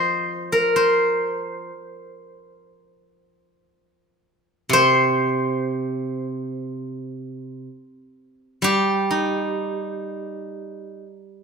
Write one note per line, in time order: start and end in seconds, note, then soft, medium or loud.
0.00 1.69 F3 soft
0.00 0.76 C5 medium
0.00 1.52 D#5 medium
0.00 0.52 F5 medium
0.52 2.65 A#4 medium
0.76 4.20 C5 medium
4.69 7.67 C3 medium
4.69 8.61 C5 loud
8.62 11.44 G3 medium
8.62 10.99 G4 medium
9.11 11.03 D#4 soft